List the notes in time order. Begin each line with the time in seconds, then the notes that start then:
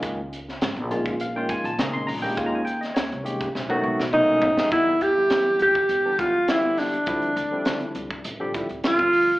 Already playing: D#3 G#3 A#3 C#4 F4
0.03 C#2, kick, closed hi-hat
0.31 C#4 G#4, closed hi-hat
0.48 snare
0.61 G#1, snare, closed hi-hat
0.76 A#1, closed hi-hat
0.91 D#3 G#3 A#3 C#4 F4, closed hi-hat
1.06 kick, closed hi-hat
1.20 C#4 F4 F5, closed hi-hat
1.36 D#3 G#3 A#3 C#4 F4 G5
1.49 G#5, kick, closed hi-hat
1.64 A#1 A5, closed hi-hat
1.78 C#3 D#3 G#3 A#3 C#4 G#4 A#5, snare, closed hi-hat
1.94 A#1 C6
2.07 A#1 A#5, open hi-hat
2.22 D#3 G#3 A#3 C#4 G4 G5
2.37 D#2 D#3 G#3 A#3 C#4 F4 G#5, kick, closed hi-hat
2.46 A#5
2.55 G#5
2.65 C#4 F4 G5, closed hi-hat
2.81 D#5, snare, closed hi-hat
2.94 D#2 C#5, snare, closed hi-hat
3.12 C2, closed hi-hat
3.23 D#3 G#3 A#3 C#4 G4, closed hi-hat
3.41 kick, closed hi-hat
3.54 B1 B3 F#4, snare
3.69 D#3 F#3 A3 B3 F#4, high tom
3.83 B2
3.99 B2, snare
4.13 D#3 F#3 A3 B3 C#4 D#4, mid tom
4.42 B1, floor tom
4.57 D#3 F#3 A3 B3 G#4, snare
4.72 E2 D3 E3 G3 B3 E4, kick, closed hi-hat
5.01 E2 B3 G4, closed hi-hat
5.17 D3 E3 G3 B3 E4
5.30 E3, snare, closed hi-hat
5.59 D2 G4, closed hi-hat
5.75 kick
5.89 B1 B3 E4, closed hi-hat
6.05 D3 E3 G3 B3 D4
6.19 B1 D3 E3 G3 B3 E4 F4, kick, closed hi-hat
6.34 E2 D4
6.48 D3 E3 G3 B3 E4 G4, snare, closed hi-hat
6.77 D4, snare, open hi-hat
6.93 closed hi-hat
7.06 D2 D3 F3 G3 C4 E4, kick, closed hi-hat
7.22 closed hi-hat
7.36 D2 C4 E4, closed hi-hat
7.52 D3 F3 G3 C4 E4
7.65 D3, snare, closed hi-hat
7.80 closed hi-hat
7.95 C2, closed hi-hat
8.11 kick
8.24 A1 C4 G4, closed hi-hat
8.40 D3 F3 G3 C4 G4
8.54 A1 D3 F3 G3 C4 E4, kick, closed hi-hat
8.69 D2 C4 G4, closed hi-hat
8.84 D3 F3 G3 C4 F4, snare, closed hi-hat
8.98 kick, closed hi-hat
9.13 open hi-hat